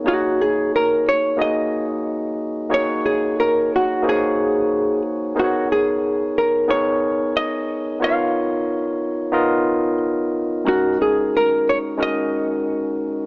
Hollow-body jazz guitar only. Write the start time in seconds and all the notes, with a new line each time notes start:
0.08 F#4
0.41 G#4
0.76 A#4
1.09 C#5
1.41 D#5
2.74 C#5
3.06 G#4
3.40 A#4
3.76 F#4
4.09 G#4
5.39 F#4
5.72 G#4
6.38 A#4
6.71 C#5
7.37 D#5
8.04 F5
9.30 D#5
10.68 F#4
11.02 G#4
11.37 A#4
11.69 C#5
12.03 D#5